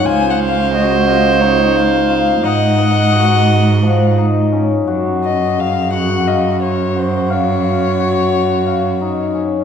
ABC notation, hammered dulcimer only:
X:1
M:7/8
L:1/8
Q:1/4=87
K:Db
V:1 name="Hammered dulcimer"
F2 G F E2 F | E E G2 F, E D | G2 A G f2 G | f f G2 f E D |]